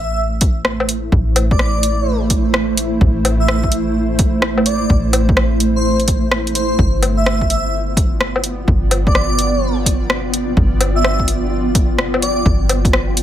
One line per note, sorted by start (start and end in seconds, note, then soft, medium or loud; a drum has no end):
0.00 1.10 A1 medium
0.00 6.79 A3 medium
0.00 6.79 E4 medium
0.00 6.78 C5 medium
0.00 0.19 E5 medium
0.41 kick loud
0.41 closed hi-hat medium
0.65 cross-stick medium
0.80 low woodblock medium
0.89 closed hi-hat medium
1.12 2.99 A1 medium
1.12 kick loud
1.36 closed hi-hat medium
1.36 low woodblock medium
1.51 2.16 D5 medium
1.51 kick loud
1.59 cross-stick loud
1.83 closed hi-hat medium
2.30 kick medium
2.30 closed hi-hat medium
2.54 cross-stick loud
2.77 closed hi-hat medium
3.01 4.88 A1 medium
3.01 kick loud
3.25 closed hi-hat medium
3.25 low woodblock medium
3.40 3.64 E5 medium
3.48 cross-stick loud
3.48 low woodblock soft
3.64 kick medium
3.72 closed hi-hat medium
4.19 kick loud
4.19 closed hi-hat medium
4.42 cross-stick loud
4.58 low woodblock medium
4.66 4.91 D5 medium
4.66 closed hi-hat medium
4.90 6.77 A1 medium
4.90 kick loud
5.13 closed hi-hat medium
5.13 low woodblock medium
5.29 kick loud
5.37 cross-stick loud
5.37 low woodblock soft
5.60 closed hi-hat soft
5.76 6.00 C5 medium
6.00 closed hi-hat soft
6.08 kick medium
6.08 closed hi-hat medium
6.32 cross-stick loud
6.47 closed hi-hat soft
6.55 6.85 C5 medium
6.55 closed hi-hat medium
6.79 8.66 G1 medium
6.79 13.23 B3 medium
6.79 kick loud
6.88 13.23 F4 medium
7.03 13.23 G5 medium
7.03 closed hi-hat soft
7.03 low woodblock medium
7.13 13.23 D5 medium
7.13 7.42 E5 medium
7.26 cross-stick loud
7.26 low woodblock soft
7.41 kick medium
7.50 7.75 E5 medium
7.50 closed hi-hat soft
7.97 kick loud
7.97 closed hi-hat soft
8.21 cross-stick loud
8.36 low woodblock medium
8.44 closed hi-hat soft
8.68 10.55 G1 medium
8.68 kick loud
8.91 closed hi-hat medium
8.91 low woodblock medium
9.07 9.72 D5 medium
9.07 kick loud
9.15 cross-stick medium
9.39 closed hi-hat soft
9.86 kick medium
9.86 closed hi-hat medium
10.10 cross-stick loud
10.34 closed hi-hat soft
10.57 12.44 G1 medium
10.57 kick loud
10.81 closed hi-hat medium
10.81 low woodblock medium
10.96 11.20 E5 medium
11.04 cross-stick medium
11.04 low woodblock soft
11.20 kick medium
11.28 closed hi-hat medium
11.75 kick loud
11.75 closed hi-hat medium
11.98 cross-stick loud
12.14 low woodblock medium
12.22 12.47 D5 medium
12.22 closed hi-hat medium
12.46 13.23 G1 medium
12.46 kick loud
12.69 closed hi-hat medium
12.69 low woodblock medium
12.85 kick loud
12.85 closed hi-hat soft
12.93 cross-stick loud
12.93 low woodblock soft
13.17 closed hi-hat medium